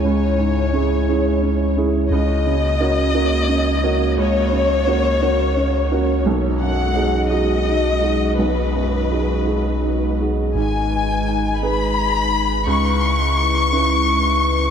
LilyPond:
<<
  \new Staff \with { instrumentName = "Violin section" } { \time 6/8 \key gis \minor \tempo 4. = 57 cis''2~ cis''8 r8 | dis''2. | cis''2. | r8 fis''4 dis''4. |
b'2~ b'8 r8 | gis''4. b''4. | cis'''2. | }
  \new Staff \with { instrumentName = "Analog synth pad" } { \time 6/8 \key gis \minor << { <gis cis''>2. | <ais cis''>2.~ | <ais cis''>2. | <gis dis''>2.~ |
<gis dis''>2. | <gis b'>2.~ | <gis b'>2. | } \\ { e'2. | fis'2.~ | fis'2. | fis'2.~ |
fis'2. | dis'2. | e'2. | } >> }
  \new Staff \with { instrumentName = "Upright piano" } { \time 6/8 \key gis \minor cis,8 gis,8 <cis' e' gis'>8 <cis' e' gis'>8 cis'8 <cis' e' gis'>8 | cis,8 cis8 <cis' fis' ais'>8 <cis' fis' ais'>8 cis'8 <cis' fis' ais'>8 | cis,8 cis8 <cis' fis' ais'>8 <cis' fis' ais'>8 cis'8 <cis' fis' ais'>8 | b,,8 fis,8 <dis' fis' gis'>8 <dis' fis' gis'>8 dis'8 <dis' fis' gis'>8 |
b,,8 fis,8 <dis' fis' gis'>8 <dis' fis' gis'>8 dis'8 <dis' fis' gis'>8 | gis,4. <dis' gis' b'>4. | cis,4. <cis' e' b'>4. | }
  \new Staff \with { instrumentName = "Sub bass" } { \clef bass \time 6/8 \key gis \minor cis,2. | cis,2.~ | cis,2. | b,,2.~ |
b,,2. | gis,,2. | cis,2. | }
>>